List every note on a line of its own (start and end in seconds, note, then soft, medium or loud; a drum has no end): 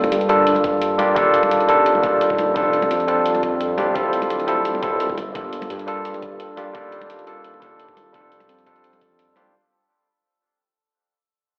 0.00 0.10 G1 loud
0.00 0.27 G3 medium
0.00 0.27 A#3 medium
0.00 0.27 D4 medium
0.00 0.28 F4 medium
0.00 0.28 A4 loud
0.00 closed hi-hat soft
0.00 high conga loud
0.12 0.45 G2 medium
0.12 closed hi-hat medium
0.21 closed hi-hat soft
0.28 0.37 G3 medium
0.28 0.37 A#3 medium
0.28 0.38 D4 medium
0.28 0.38 F4 medium
0.28 0.38 A4 medium
0.28 closed hi-hat medium
0.47 1.15 G2 medium
0.47 closed hi-hat medium
0.55 closed hi-hat soft
0.55 high conga medium
0.64 kick loud
0.64 closed hi-hat medium
0.82 closed hi-hat medium
0.98 1.07 G3 medium
0.98 1.07 A#3 medium
0.98 1.07 D4 medium
0.98 1.08 F4 medium
0.98 1.08 G4 loud
0.98 closed hi-hat medium
0.98 high conga medium
1.15 2.02 D#1 medium
1.15 1.66 G3 medium
1.15 1.66 A#3 medium
1.15 1.67 D4 medium
1.15 1.67 F4 medium
1.15 1.67 A4 loud
1.15 kick loud
1.15 closed hi-hat medium
1.34 closed hi-hat medium
1.43 closed hi-hat soft
1.43 high conga medium
1.51 closed hi-hat medium
1.60 closed hi-hat soft
1.68 2.01 G3 medium
1.68 2.01 A#3 medium
1.68 2.02 D4 medium
1.68 2.02 F4 medium
1.68 2.02 A4 loud
1.68 closed hi-hat medium
1.86 closed hi-hat medium
1.95 high conga medium
2.02 2.37 D#1 loud
2.02 2.53 G3 medium
2.02 2.54 A#3 medium
2.02 2.54 D4 medium
2.02 2.54 F4 medium
2.02 2.55 A4 medium
2.02 kick loud
2.02 closed hi-hat medium
2.21 closed hi-hat medium
2.30 kick medium
2.38 2.47 D#1 medium
2.38 closed hi-hat medium
2.38 high conga medium
2.48 2.55 D#1 medium
2.54 2.89 F1 loud
2.54 3.06 G3 medium
2.54 3.06 C4 medium
2.54 3.06 D4 medium
2.54 3.07 F4 medium
2.54 3.07 A4 medium
2.54 kick loud
2.54 closed hi-hat medium
2.73 closed hi-hat medium
2.82 closed hi-hat soft
2.82 high conga loud
2.91 3.24 F2 loud
2.91 closed hi-hat medium
3.00 closed hi-hat soft
3.07 3.16 G3 medium
3.07 3.16 C4 medium
3.07 3.17 D4 medium
3.07 3.17 F4 medium
3.07 3.17 A4 medium
3.07 closed hi-hat medium
3.25 3.79 F2 medium
3.25 closed hi-hat medium
3.35 closed hi-hat soft
3.35 high conga medium
3.43 kick loud
3.43 closed hi-hat medium
3.61 closed hi-hat medium
3.77 3.89 A1 loud
3.77 3.86 G3 medium
3.77 3.86 C4 medium
3.77 3.86 D4 medium
3.77 3.87 F4 medium
3.77 3.87 G4 loud
3.77 closed hi-hat medium
3.77 high conga medium
3.87 3.95 C2 medium
3.94 4.81 D1 loud
3.94 4.45 G3 medium
3.94 4.46 C4 medium
3.94 4.46 E4 medium
3.94 4.46 F4 medium
3.94 4.47 A4 medium
3.94 kick loud
3.94 closed hi-hat medium
4.13 closed hi-hat medium
4.22 closed hi-hat soft
4.22 high conga medium
4.30 closed hi-hat medium
4.40 closed hi-hat soft
4.47 4.80 G3 medium
4.47 4.80 C4 medium
4.47 4.81 E4 medium
4.47 4.81 F4 medium
4.47 4.81 A4 medium
4.47 closed hi-hat medium
4.65 closed hi-hat medium
4.75 high conga medium
4.82 5.19 D1 loud
4.82 5.16 G3 medium
4.82 5.16 C4 medium
4.82 5.17 E4 medium
4.82 5.17 F4 medium
4.82 5.17 A4 medium
4.82 kick loud
4.82 closed hi-hat medium
5.00 closed hi-hat medium
5.10 kick medium
5.17 5.26 G1 medium
5.17 closed hi-hat medium
5.17 high conga medium
5.27 5.34 G1 medium
5.34 5.69 G1 loud
5.34 5.85 G3 medium
5.34 5.85 A#3 medium
5.34 5.85 D4 medium
5.34 5.86 F4 medium
5.34 5.86 A4 medium
5.34 kick loud
5.34 closed hi-hat medium
5.53 closed hi-hat medium
5.62 closed hi-hat soft
5.62 high conga medium
5.70 6.04 G2 loud
5.70 closed hi-hat medium
5.79 closed hi-hat soft
5.87 5.95 G3 medium
5.87 5.96 A#3 medium
5.87 5.96 D4 medium
5.87 5.96 F4 medium
5.87 5.96 A4 loud
5.87 closed hi-hat medium
6.05 6.73 G2 medium
6.05 closed hi-hat medium
6.14 closed hi-hat soft
6.14 high conga medium
6.22 kick medium
6.22 closed hi-hat medium
6.40 closed hi-hat medium
6.56 6.65 G3 medium
6.56 6.65 A#3 medium
6.56 6.66 D4 medium
6.56 6.66 F4 medium
6.56 6.66 G4 loud
6.56 closed hi-hat medium
6.56 high conga medium
6.73 7.61 D#1 loud
6.73 7.24 G3 medium
6.73 7.25 A#3 medium
6.73 7.25 D4 medium
6.73 7.25 F4 medium
6.73 7.26 A4 loud
6.73 kick loud
6.73 closed hi-hat medium
6.92 closed hi-hat medium
7.01 closed hi-hat soft
7.01 high conga medium
7.10 closed hi-hat medium
7.19 closed hi-hat soft
7.26 7.59 G3 medium
7.26 7.60 A#3 medium
7.26 7.60 D4 medium
7.26 7.60 F4 medium
7.26 7.60 A4 medium
7.26 closed hi-hat medium
7.44 closed hi-hat medium
7.54 high conga medium
7.60 7.95 D#1 medium
7.60 8.11 G3 medium
7.60 8.12 A#3 medium
7.60 8.12 D4 medium
7.60 8.12 F4 medium
7.60 8.13 A4 medium
7.60 kick medium
7.60 closed hi-hat medium
7.80 closed hi-hat medium
7.89 kick medium
7.97 8.05 D#1 medium
7.97 closed hi-hat medium
7.97 high conga medium
8.06 8.13 D#1 medium
8.12 8.48 F1 medium
8.12 8.64 G3 medium
8.12 8.64 C4 medium
8.12 8.64 D4 medium
8.12 8.65 F4 medium
8.12 8.65 A4 loud
8.12 kick loud
8.12 closed hi-hat medium
8.32 closed hi-hat medium
8.40 closed hi-hat soft
8.40 high conga medium
8.49 8.83 F2 loud
8.49 closed hi-hat loud
8.59 closed hi-hat soft
8.66 8.75 G3 medium
8.66 8.75 C4 medium
8.66 8.75 D4 medium
8.66 8.75 F4 medium
8.66 8.75 A4 medium
8.66 kick medium
8.66 closed hi-hat medium
8.76 closed hi-hat soft
8.84 9.38 F2 medium
8.84 closed hi-hat medium
8.93 closed hi-hat soft
8.93 high conga medium
9.01 kick loud
9.01 closed hi-hat medium
9.19 closed hi-hat loud
9.36 9.47 A1 loud
9.36 9.44 G3 medium
9.36 9.45 C4 medium
9.36 9.45 D4 medium
9.36 9.45 F4 medium
9.36 9.45 G4 loud
9.36 closed hi-hat medium
9.36 high conga medium
9.46 9.53 C2 medium